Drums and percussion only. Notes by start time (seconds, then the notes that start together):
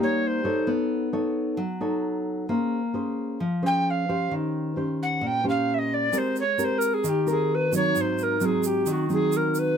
6.13 shaker
6.36 shaker
6.59 shaker
6.81 shaker
7.04 shaker
7.27 shaker
7.73 shaker
7.96 shaker
8.18 shaker
8.41 shaker
8.63 shaker
8.86 shaker
9.10 shaker
9.32 shaker
9.55 shaker